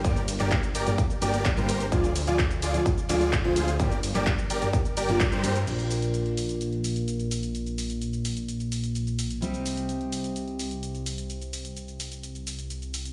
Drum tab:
CC |----------------|----------------|----------------|x---------------|
RD |--x---x---x---x-|--x---x---x---x-|--x---x---x---x-|----------------|
HH |xxoxxxoxxxoxxxox|xxoxxxoxxxoxxxox|xxoxxxoxxxoxxxox|xxoxxxoxxxoxxxox|
SH |xxxxxxxxxxxxxxxx|xxxxxxxxxxxxx-xx|xxxxxxxxxxxxxxxx|xxxxx-xxx-xxxxxx|
CP |---xx-------x---|----x-----x-x---|---xx-------x---|----------------|
BD |o---o---o---o---|o---o---o---o---|o---o---o---o---|----------------|

CC |----------------|----------------|----------------|
RD |----------------|----------------|----------------|
HH |xxoxxxoxxxoxxxox|xxoxxxoxxxoxxxox|xxoxxxoxxxoxxxox|
SH |xxxxxxxxxxxxxxxx|xxxxx-xxx-xxxxxx|xxxxxxxxxxxxxxxx|
CP |----------------|----------------|----------------|
BD |----------------|----------------|----------------|